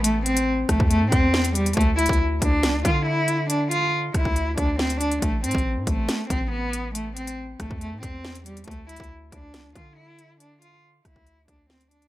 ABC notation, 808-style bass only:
X:1
M:4/4
L:1/16
Q:1/4=139
K:C
V:1 name="808-style bass" clef=bass
A,,,6 A,,, E,,2 A,, E,,6 | D,,3 D,,3 D,,2 C,, D,, D,6- | D,6 C,, D,,3 D,,6 | A,,,2 A,, A,,,2 A,, A,,,2 z2 A,,,6- |
A,,,6 A,,, E,,2 A,, E,,6 | D,,3 D,,3 D,,2 C,, D,, D,6- | D,6 C,, D,,3 D,,6 |]